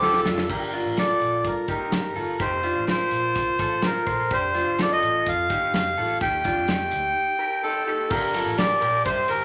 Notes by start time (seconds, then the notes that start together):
Already playing: D2 G4
0.02 F4 A4, snare
0.13 snare
0.25 F1 D4 F4, snare
0.38 snare
0.49 G1 D4 G4 A#4, kick, crash
0.73 D4 F4, closed hi-hat
0.86 A1
0.97 F4 A4 D5, snare, closed hi-hat
1.21 A#1, closed hi-hat
1.44 G2 A#4, kick, closed hi-hat
1.68 G1 D#4 G4 A#4, kick, closed hi-hat
1.92 snare, closed hi-hat
2.16 G1 F4 A4, open hi-hat
2.40 F1 D#4 G4 C5, kick, closed hi-hat
2.63 D4 F4, closed hi-hat
2.77 A1
2.87 F4 A#4 C5, snare, closed hi-hat
3.11 A#1, closed hi-hat
3.35 C2, kick, closed hi-hat
3.59 A1 F4 A4, kick, closed hi-hat
3.82 F4 A#4, snare, closed hi-hat
4.07 A#1 A4 C5, kick, open hi-hat
4.31 F1 D4 G4 C5, kick, closed hi-hat
4.54 D4 F4, snare, closed hi-hat
4.67 G1
4.79 F4 A4 D5, snare, closed hi-hat
4.92 D#5
5.03 A1, closed hi-hat
5.26 F2 F5, kick, closed hi-hat
5.50 G1 D#4 G4, kick, closed hi-hat
5.74 F1 F5, snare, closed hi-hat
5.98 A1 F4 A4, open hi-hat
6.21 D#2 D#4 G4 G5, kick, closed hi-hat
6.44 D4 F4, kick, snare, closed hi-hat
6.57 F2
6.68 D#4 G4, snare, closed hi-hat
6.91 D2, closed hi-hat
7.39 G4 A#4
7.63 D#4 A4
7.87 D#4 G4
8.10 G1 D4 G4 A#4, kick, crash
8.34 F4 A4, snare, ride
8.46 A1
8.58 G4 A#4 D5, snare, ride
8.82 A#1 G4 A#4, ride
9.05 G2 G4 C5, kick, ride
9.28 G1 G4 A#4, ride